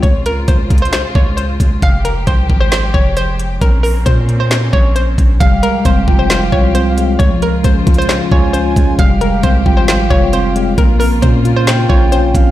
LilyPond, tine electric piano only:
\new Staff \with { instrumentName = "Tine electric piano" } { \time 4/4 \key f \minor \tempo 4 = 134 r1 | r1 | r1 | g8 aes8 c'8 f'4 f'8 c'8 aes8 |
f8 aes8 des'8 f'4 f'8 des'8 aes8 | g8 aes8 c'8 f'4 f'8 c'8 aes8 | bes8 c'8 des'8 f'4 f'8 des'8 c'8 | }